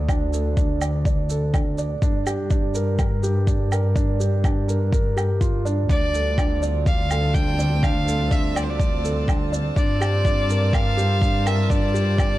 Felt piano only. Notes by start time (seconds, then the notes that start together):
Already playing: D4 A4 D5
0.09 D4
0.33 A4
0.57 D4
0.82 D5
1.06 D5
1.30 A4
1.54 D4
1.78 D5
2.03 D4
2.26 G4
2.51 D4
2.75 A#4
2.99 A#4
3.23 G4
3.47 D4
3.71 A#4
3.95 D4
4.20 G4
4.44 D4
4.68 A#4
4.92 A#4
5.16 G4
5.41 F4
5.65 D4
5.89 D4
6.14 A4
6.38 D4
6.62 D5
6.86 D5
7.10 A4
7.35 D4
7.59 D5
7.83 D4
8.07 A4
8.31 D4
8.55 D5
8.79 D5
9.04 A4
9.28 D4
9.52 D5
9.76 D4
10.01 G4
10.25 D4
10.49 A#4
10.73 A#4
10.97 G4
11.21 D4
11.46 A#4
11.70 D4
11.94 G4
12.18 D4